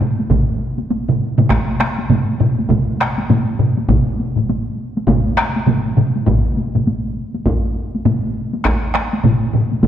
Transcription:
0.01 taiko low-mid, taiko mid
0.19 taiko high
0.30 taiko, taiko low-mid, taiko mid, taiko high
0.78 taiko high
0.91 taiko high
1.08 taiko low-mid, taiko mid
1.38 taiko low-mid, taiko mid, taiko high
1.50 taiko rim, taiko, taiko high
1.80 taiko rim, taiko high
1.98 taiko high
2.10 taiko low-mid, taiko mid, taiko high
2.40 taiko low-mid, taiko mid
2.59 taiko high
2.70 taiko, taiko low-mid, taiko mid, taiko high
3.00 taiko rim
3.18 taiko high
3.30 taiko low-mid, taiko mid, taiko high
3.59 taiko low-mid, taiko mid
3.77 taiko high
3.89 taiko, taiko low-mid, taiko mid, taiko high
4.20 taiko high
4.36 taiko low-mid, taiko mid, taiko high
4.49 taiko high
4.97 taiko high
5.07 taiko, taiko low-mid, taiko mid, taiko high
5.37 taiko rim
5.56 taiko high
5.67 taiko low-mid, taiko mid, taiko high
5.97 taiko low-mid, taiko mid
6.16 taiko high
6.26 taiko, taiko low-mid, taiko mid, taiko high
6.57 taiko high
6.75 taiko low-mid, taiko mid, taiko high
6.87 taiko high
7.34 taiko high
7.46 taiko, taiko high
7.95 taiko high
8.05 taiko low-mid, taiko mid, taiko high
8.53 taiko high
8.65 taiko rim, taiko, taiko high
8.95 taiko rim, taiko high
9.13 taiko high
9.24 taiko low-mid, taiko mid, taiko high
9.53 taiko low-mid, taiko mid
9.72 taiko high
9.83 taiko, taiko low-mid, taiko mid, taiko high

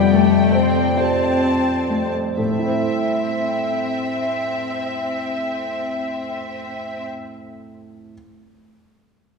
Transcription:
Already playing: F2 C3 G3 A3 B3 G4 D5 G5 C6
0.13 A3
0.55 C4
0.97 C4 G4 C5 A5
1.43 C4
1.90 A3
2.37 A2 C4 A4 E5
2.45 A3
2.52 C4
2.59 E4
2.65 C5

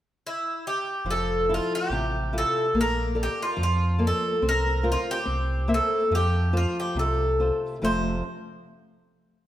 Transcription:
0.27 E4
0.67 G4
1.05 F1 F3
1.11 A4
1.49 E4 F4 A4
1.54 F4
1.75 G4
1.90 A1 C3
2.33 E4 F4 A4
2.38 A4
2.74 A#1 A#3
2.81 A#4
3.15 A4 A#4 D5
3.23 G4
3.42 F4
3.57 F2 F3
3.63 F4
3.99 A#3 A4 D5
4.07 A4
4.42 C2 C4
4.49 A#4
4.83 F4 A#4 C5
4.92 F4
5.11 G4
5.25 C2 C4
5.68 A#3 C5 E5
5.74 A4
6.11 F2 F3
6.15 G4
6.53 F4 A4 C5
6.57 F4
6.80 G4
6.95 C2 C3
6.99 A4
7.40 F4 A4 C5
7.82 F1 F2 C3 F3 A3 C4 A4 C5

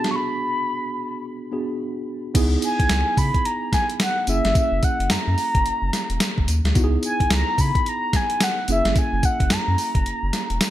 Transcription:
Already playing: B3 D4 F#4 G#4
0.04 snare, closed hi-hat
0.11 C#6
0.16 B5
1.52 B3 D4 F#4 G#4
2.34 C#2 B3 D#4 E4 G#4, kick, closed hi-hat, crash, tambourine
2.62 G#5, closed hi-hat, tambourine
2.79 B1, kick, closed hi-hat
2.89 C#2, snare, closed hi-hat, tambourine
3.17 C#3 B5, kick, open hi-hat, tambourine
3.34 kick, closed hi-hat
3.45 A#5, closed hi-hat
3.73 G#5, kick, snare, closed hi-hat, tambourine
3.90 closed hi-hat
4.00 F#5, snare, closed hi-hat, tambourine
4.27 F#1 A#3 C#4 E4 G#4 E5, closed hi-hat, tambourine
4.45 G1, snare, closed hi-hat
4.55 E5, kick, closed hi-hat, tambourine
4.72 F#1
4.83 F#5, kick, closed hi-hat, tambourine
5.00 F#1, closed hi-hat
5.10 F#2 A#5, snare, closed hi-hat, tambourine
5.27 F#2
5.38 open hi-hat, tambourine
5.55 F#1, kick, closed hi-hat
5.65 F#1, closed hi-hat
5.82 F#1
5.93 snare, closed hi-hat, tambourine
6.10 E1, closed hi-hat
6.20 snare, closed hi-hat, tambourine
6.38 F#1, kick
6.48 D#2, closed hi-hat, tambourine
6.64 D2, snare, closed hi-hat
6.75 C#2 B3 D#4 E4 F#4, kick, closed hi-hat, tambourine
6.84 G#4
7.03 G#5, closed hi-hat, tambourine
7.20 B1, kick, closed hi-hat
7.30 C#2 A#5, snare, closed hi-hat, tambourine
7.58 C#3 B5, kick, open hi-hat, tambourine
7.75 kick, closed hi-hat
7.86 A#5, closed hi-hat
8.13 G#5, kick, snare, closed hi-hat, tambourine
8.30 closed hi-hat
8.41 F#5, snare, closed hi-hat, tambourine
8.68 F#1 A#3 C#4 E4 G#4, closed hi-hat, tambourine
8.72 E5
8.85 G1, snare, closed hi-hat
8.96 G#5, kick, closed hi-hat, tambourine
9.13 F#1
9.23 F#5, kick, closed hi-hat, tambourine
9.40 F#1, kick, closed hi-hat
9.50 F#2 A#5, snare, closed hi-hat, tambourine
9.68 F#2
9.78 open hi-hat, tambourine
9.95 F#1, kick, closed hi-hat
10.06 F#1, closed hi-hat
10.23 F#1
10.33 snare, closed hi-hat, tambourine
10.50 E1, closed hi-hat
10.61 snare, closed hi-hat, tambourine

